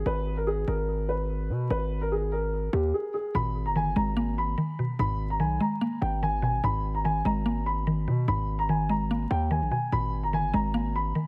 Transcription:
0.06 0.65 G#1 loud
0.06 0.35 B4 loud
0.37 0.46 A#4 medium
0.47 0.66 G#4 medium
0.68 1.51 G#1 loud
0.68 1.06 A#4 medium
1.09 1.67 B4 medium
1.50 1.69 B2 loud
1.70 2.69 G#1 loud
1.70 1.99 B4 medium
2.01 2.11 A#4 medium
2.12 2.31 G#4 medium
2.32 2.71 A#4 medium
2.73 2.93 D#2 loud
2.73 2.92 G4 medium
2.94 3.12 G#4 medium
3.14 3.33 G#4 medium
3.35 3.67 G#1 loud
3.35 4.38 A#2 medium
3.35 3.64 B5 loud
3.66 3.95 G1 loud
3.66 3.75 A#5 medium
3.76 4.56 D#3 medium
3.76 3.95 G#5 medium
3.96 4.56 G#1 loud
3.96 4.99 G#3 medium
3.96 4.35 A#5 medium
4.17 5.20 A#3 loud
4.38 4.96 B5 medium
4.58 5.39 D#3 medium
4.79 5.82 B2 medium
4.99 5.42 G#1 loud
4.99 6.02 G#2 loud
4.99 5.28 B5 loud
5.30 5.40 A#5 medium
5.40 5.60 B1 loud
5.40 6.22 D#3 medium
5.40 5.59 G#5 medium
5.61 6.63 G#3 medium
5.61 5.99 A#5 medium
5.81 6.64 A#3 loud
6.01 6.61 G#1 loud
6.01 6.21 G5 medium
6.23 6.64 D#3 medium
6.23 6.42 G#5 medium
6.42 6.63 B2 medium
6.42 6.62 G#5 medium
6.64 7.23 G#1 loud
6.64 7.67 G#2 loud
6.64 6.93 B5 loud
6.95 7.04 A#5 medium
7.04 7.86 D#3 medium
7.04 7.24 G#5 medium
7.25 8.09 G#1 loud
7.25 8.28 G#3 medium
7.25 7.64 A#5 medium
7.46 8.48 A#3 medium
7.66 8.24 B5 medium
7.87 8.68 D#3 loud
8.07 8.27 B2 loud
8.07 9.10 B2 medium
8.28 9.27 G#1 loud
8.28 9.31 G#2 loud
8.28 8.57 B5 loud
8.59 8.68 A#5 medium
8.69 9.50 D#3 medium
8.69 8.88 G#5 medium
8.89 9.92 G#3 medium
8.89 9.28 A#5 medium
9.11 9.93 A#3 loud
9.31 9.63 D#2 loud
9.31 9.50 G5 medium
9.51 9.92 D#3 medium
9.51 9.70 G#5 medium
9.61 9.71 A#1 loud
9.71 9.92 B2 medium
9.71 9.91 G#5 medium
9.92 10.25 G#1 loud
9.92 10.95 A#2 medium
9.92 10.21 B5 loud
10.23 10.52 G1 loud
10.23 10.33 A#5 medium
10.33 11.14 D#3 medium
10.33 10.53 G#5 medium
10.54 11.13 G#1 loud
10.54 11.27 G#3 medium
10.54 10.92 A#5 medium
10.74 11.27 A#3 medium
10.96 11.27 B5 medium
11.15 11.27 D#3 medium

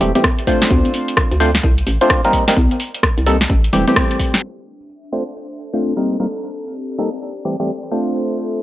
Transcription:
0.01 0.12 E1 medium
0.01 0.12 E3 medium
0.01 0.12 G3 medium
0.01 0.12 A3 medium
0.01 0.12 C4 medium
0.01 0.12 G4 medium
0.01 open hi-hat loud
0.15 0.26 E3 medium
0.15 0.26 G3 medium
0.15 0.26 A3 medium
0.15 0.26 C4 medium
0.15 0.26 G4 medium
0.15 closed hi-hat medium
0.15 tambourine medium
0.15 high conga medium
0.24 kick loud
0.24 cross-stick loud
0.24 tambourine medium
0.39 closed hi-hat medium
0.39 tambourine soft
0.47 1.38 A3 medium
0.47 1.38 C4 medium
0.47 1.38 D4 medium
0.47 1.38 F4 medium
0.47 1.38 C5 loud
0.47 kick medium
0.47 open hi-hat loud
0.62 snare medium
0.62 closed hi-hat medium
0.62 tambourine medium
0.70 0.82 D2 medium
0.70 kick loud
0.70 tambourine medium
0.70 high conga medium
0.85 closed hi-hat soft
0.85 tambourine soft
0.94 open hi-hat loud
1.08 closed hi-hat medium
1.08 tambourine medium
1.17 kick loud
1.17 cross-stick loud
1.17 tambourine medium
1.31 1.60 D2 medium
1.31 closed hi-hat soft
1.31 tambourine soft
1.40 1.51 A3 loud
1.40 1.51 C4 medium
1.40 1.51 D4 medium
1.40 1.51 F4 medium
1.40 1.51 C5 loud
1.40 open hi-hat loud
1.55 snare medium
1.55 closed hi-hat medium
1.55 tambourine medium
1.63 1.83 C2 loud
1.63 kick loud
1.63 tambourine soft
1.78 closed hi-hat medium
1.78 tambourine soft
1.87 1.98 A1 medium
1.87 open hi-hat loud
2.01 2.21 A3 medium
2.01 2.21 C4 medium
2.01 2.21 D4 medium
2.01 2.21 F4 medium
2.01 2.21 C5 loud
2.01 closed hi-hat medium
2.01 tambourine medium
2.10 kick loud
2.10 cross-stick loud
2.10 tambourine medium
2.25 2.45 G3 medium
2.25 2.45 A#3 medium
2.25 2.45 C4 medium
2.25 2.45 D#4 medium
2.25 2.45 A#4 loud
2.25 closed hi-hat medium
2.25 tambourine soft
2.33 kick medium
2.33 open hi-hat loud
2.48 2.54 G3 medium
2.48 2.54 A#3 medium
2.48 2.54 C4 medium
2.48 2.54 D#4 medium
2.48 2.54 A#4 loud
2.48 snare medium
2.48 closed hi-hat medium
2.48 tambourine medium
2.57 2.68 C2 loud
2.57 kick loud
2.57 tambourine soft
2.57 high conga medium
2.71 closed hi-hat soft
2.71 tambourine soft
2.80 open hi-hat loud
2.94 closed hi-hat medium
2.94 tambourine medium
3.03 kick loud
3.03 cross-stick loud
3.03 tambourine soft
3.18 3.46 C2 medium
3.18 closed hi-hat soft
3.18 tambourine soft
3.26 3.37 G3 medium
3.26 3.37 A#3 medium
3.26 3.37 C4 medium
3.26 3.37 D#4 medium
3.26 3.37 A4 loud
3.26 open hi-hat loud
3.41 snare medium
3.41 closed hi-hat medium
3.41 tambourine medium
3.50 3.69 A1 loud
3.50 kick loud
3.50 tambourine soft
3.64 closed hi-hat medium
3.64 tambourine soft
3.73 3.84 E1 medium
3.73 3.85 E3 medium
3.73 3.85 G3 medium
3.73 3.85 A3 medium
3.73 3.85 C4 medium
3.73 3.85 G4 loud
3.73 open hi-hat loud
3.87 4.42 E3 medium
3.87 4.42 G3 medium
3.87 4.42 A3 medium
3.87 4.42 C4 medium
3.87 4.42 G4 medium
3.87 closed hi-hat medium
3.87 tambourine medium
3.87 high conga medium
3.96 kick loud
3.96 cross-stick loud
3.96 tambourine medium
4.11 closed hi-hat medium
4.11 tambourine soft
4.19 kick medium
4.19 open hi-hat loud
4.34 snare medium
4.34 closed hi-hat medium
4.34 tambourine medium
4.43 6.52 D4 medium
4.43 tambourine soft
4.57 tambourine soft
4.63 6.05 E5 medium
4.80 tambourine medium
4.89 tambourine soft
5.04 tambourine soft
5.12 5.23 A3 loud
5.12 5.23 C4 medium
5.12 5.23 D4 medium
5.12 5.23 F4 medium
5.12 5.23 C5 loud
5.17 6.52 A4 medium
5.27 tambourine soft
5.36 tambourine soft
5.50 tambourine soft
5.73 5.93 A3 medium
5.73 5.93 C4 medium
5.73 5.93 D4 medium
5.73 5.93 F4 medium
5.73 5.93 C5 medium
5.73 tambourine medium
5.82 tambourine soft
5.97 6.16 G3 medium
5.97 6.16 A#3 medium
5.97 6.16 C4 medium
5.97 6.16 D#4 medium
5.97 6.17 A#4 medium
5.97 tambourine soft
6.06 7.61 C4 medium
6.20 6.26 G3 medium
6.20 6.26 A#3 medium
6.20 6.26 C4 medium
6.20 6.26 D#4 medium
6.20 6.26 A#4 loud
6.20 tambourine medium
6.29 tambourine soft
6.35 7.62 G4 medium
6.43 tambourine soft
6.51 7.61 D5 medium
6.67 tambourine medium
6.75 tambourine soft
6.90 tambourine soft
6.98 7.09 G3 medium
6.98 7.09 A#3 medium
6.98 7.09 C4 medium
6.98 7.09 D#4 medium
6.98 7.09 A4 medium
7.13 tambourine medium
7.22 8.62 A4 medium
7.22 tambourine soft
7.36 tambourine soft
7.45 7.56 E3 medium
7.45 7.56 G3 medium
7.45 7.56 A3 medium
7.45 7.56 C4 medium
7.45 7.56 G4 medium
7.60 7.71 E3 medium
7.60 7.71 G3 medium
7.60 7.71 A3 medium
7.60 7.71 C4 medium
7.60 7.71 G4 medium
7.60 tambourine medium
7.65 8.62 E5 medium
7.65 8.15 B5 medium
7.65 tambourine soft
7.83 tambourine soft
7.92 8.62 A3 medium
7.92 8.62 C4 medium
7.92 8.62 D4 medium
7.92 8.62 F4 medium
7.92 8.62 C5 loud
8.06 tambourine medium
8.15 8.62 D4 medium
8.15 tambourine soft
8.29 tambourine soft
8.53 tambourine medium

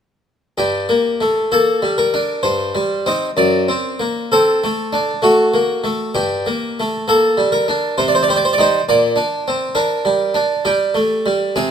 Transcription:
0.58 0.88 G2 soft
0.58 1.38 G4 medium
0.89 1.22 A#3 soft
1.21 1.52 A3 soft
1.52 1.84 A#3 soft
1.52 1.98 A4 medium
1.82 2.15 G3 soft
1.98 2.44 A#4 medium
2.14 2.44 D4 soft
2.43 2.74 G2 soft
2.43 3.37 C5 medium
2.75 3.08 G3 soft
3.06 3.29 C4 soft
3.06 3.29 D#4 soft
3.37 3.68 F#2 soft
3.37 4.32 D5 medium
3.69 4.02 C4 soft
4.00 4.32 A#3 soft
4.32 4.65 C4 soft
4.32 5.10 A4 medium
4.64 4.96 A3 soft
4.93 5.25 D4 soft
5.22 5.55 A3 soft
5.22 6.15 F#4 medium
5.54 5.85 A#3 soft
5.84 6.15 A3 soft
6.15 6.45 G2 soft
6.15 6.93 G4 medium
6.46 6.78 A#3 soft
6.80 7.09 A3 soft
7.08 7.39 A#3 soft
7.08 7.47 A4 medium
7.37 7.69 G3 soft
7.52 7.98 A#4 medium
7.68 7.98 D4 soft
7.98 8.27 C3 medium
7.98 8.06 C5 medium
8.08 8.15 D5 medium
8.15 8.22 C5 medium
8.23 8.30 D5 medium
8.29 8.57 G3 soft
8.29 8.37 C5 medium
8.36 8.44 D5 medium
8.45 8.53 C5 medium
8.53 8.61 D5 medium
8.58 8.79 G3 soft
8.58 8.79 D#4 soft
8.58 8.83 C5 medium
8.89 9.17 A#2 medium
8.89 9.64 D5 medium
9.16 9.48 D4 soft
9.48 9.77 C4 soft
9.75 10.07 D4 soft
9.75 10.52 A#4 medium
10.05 10.37 G3 soft
10.34 10.67 D4 soft
10.65 10.97 G3 soft
10.65 11.55 G4 medium
10.94 11.25 A3 soft
11.26 11.55 G3 soft
11.56 11.71 C3 medium
11.56 11.71 G#4 medium

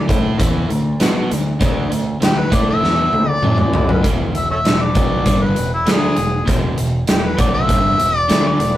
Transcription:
0.08 0.37 A2 medium
0.08 0.38 A3 medium
0.08 0.38 E4 medium
0.08 0.38 A4 medium
0.08 kick loud
0.08 closed hi-hat medium
0.38 0.68 E2 medium
0.38 0.68 E3 medium
0.38 0.68 B3 loud
0.38 0.68 E4 loud
0.38 kick loud
0.38 closed hi-hat medium
0.70 0.98 D2 medium
0.70 0.94 D3 medium
0.70 0.94 A3 medium
0.70 closed hi-hat medium
1.00 1.28 B2 medium
1.00 1.29 B3 medium
1.00 1.30 F#4 medium
1.00 1.30 B4 medium
1.00 snare medium
1.00 closed hi-hat medium
1.30 1.59 D2 medium
1.30 1.54 D3 medium
1.30 1.55 A3 medium
1.30 closed hi-hat medium
1.60 1.89 D2 medium
1.60 1.89 D3 medium
1.60 1.90 A3 loud
1.60 1.90 D4 loud
1.60 kick medium
1.60 closed hi-hat medium
1.90 2.20 D2 medium
1.90 2.15 D3 medium
1.90 2.15 A3 medium
1.90 closed hi-hat medium
2.21 2.50 D2 medium
2.21 2.45 D3 medium
2.21 2.46 A3 medium
2.21 2.40 G4 loud
2.21 snare loud
2.21 closed hi-hat medium
2.39 2.57 B4 medium
2.51 2.80 A2 medium
2.51 2.81 A3 medium
2.51 2.81 E4 medium
2.51 2.82 A4 medium
2.51 kick loud
2.51 closed hi-hat medium
2.55 2.68 D5 medium
2.70 3.30 E5 medium
2.81 3.11 E2 medium
2.81 3.11 E3 medium
2.81 3.12 B3 medium
2.81 3.12 E4 loud
2.81 snare medium
3.12 3.41 D2 medium
3.12 3.37 D3 medium
3.12 3.37 A3 medium
3.12 high tom medium
3.30 3.57 D5 medium
3.42 4.00 F#2 medium
3.42 4.03 F#3 medium
3.42 4.03 C#4 medium
3.42 4.03 F#4 medium
3.42 mid tom medium
3.58 3.93 D5 medium
3.58 mid tom medium
3.74 floor tom loud
3.89 4.04 B4 medium
3.89 floor tom medium
4.03 4.32 E1 medium
4.03 4.33 E2 medium
4.03 4.33 B2 loud
4.03 4.34 E3 loud
4.03 kick loud
4.03 closed hi-hat medium
4.34 4.63 E1 medium
4.34 4.59 E2 medium
4.34 4.59 B2 medium
4.34 4.49 E5 medium
4.34 closed hi-hat medium
4.51 4.57 A4 medium
4.51 4.59 C#5 medium
4.51 4.83 E5 medium
4.65 4.93 E1 medium
4.65 4.89 E2 medium
4.65 4.89 B2 medium
4.65 snare loud
4.65 closed hi-hat medium
4.82 5.45 D5 medium
4.94 5.24 B1 medium
4.94 5.24 B2 medium
4.94 5.24 F#3 medium
4.94 5.25 B3 loud
4.94 kick loud
4.94 closed hi-hat medium
5.25 5.54 G1 medium
5.25 5.55 G2 medium
5.25 5.55 D3 loud
5.25 5.55 G3 medium
5.25 kick medium
5.25 closed hi-hat medium
5.43 5.71 B4 medium
5.56 5.85 E1 medium
5.56 5.80 E2 medium
5.56 5.80 B2 medium
5.56 closed hi-hat medium
5.74 5.87 E4 medium
5.87 6.16 D2 medium
5.87 6.16 D3 medium
5.87 6.16 A3 loud
5.87 6.16 D4 medium
5.87 snare loud
5.87 closed hi-hat medium
5.91 6.48 G#4 loud
6.16 6.46 E1 medium
6.16 6.41 E2 medium
6.16 6.41 B2 medium
6.16 closed hi-hat medium
6.46 6.76 E1 medium
6.46 6.76 E2 medium
6.46 6.76 B2 medium
6.46 6.77 E3 loud
6.46 kick medium
6.46 closed hi-hat medium
6.77 7.06 E1 medium
6.77 7.02 E2 medium
6.77 7.02 B2 medium
6.77 closed hi-hat medium
7.07 7.36 E1 medium
7.07 7.32 E2 medium
7.07 7.33 B2 medium
7.07 7.26 G4 medium
7.07 snare loud
7.07 closed hi-hat medium
7.25 7.38 B4 medium
7.38 7.67 B1 medium
7.38 7.68 B2 medium
7.38 7.68 F#3 medium
7.38 7.68 B3 loud
7.38 7.54 D5 medium
7.38 kick loud
7.38 closed hi-hat medium
7.54 8.17 E5 loud
7.68 7.97 G1 loud
7.68 7.98 G2 medium
7.68 7.98 D3 loud
7.68 7.98 G3 loud
7.68 kick medium
7.68 closed hi-hat medium
7.99 8.27 E1 medium
7.99 8.23 E2 medium
7.99 8.23 B2 medium
7.99 closed hi-hat medium
8.17 8.47 D5 loud
8.28 8.58 D2 medium
8.28 8.58 D3 medium
8.28 8.59 A3 medium
8.28 8.59 D4 loud
8.28 snare loud
8.28 closed hi-hat medium
8.47 8.77 D5 medium
8.59 8.77 E1 medium
8.59 8.77 E2 medium
8.59 8.77 B2 medium
8.59 closed hi-hat medium

